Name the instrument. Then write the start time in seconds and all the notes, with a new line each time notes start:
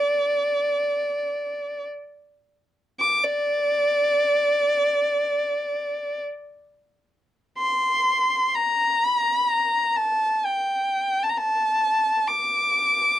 violin
Already playing: D5
3.00 D6
3.24 D5
7.58 C6
8.55 A#5
9.05 B5
9.19 A#5
9.34 B5
9.47 A#5
9.96 A5
10.46 G5
11.23 A5
11.30 A#5
11.37 A5
12.28 D6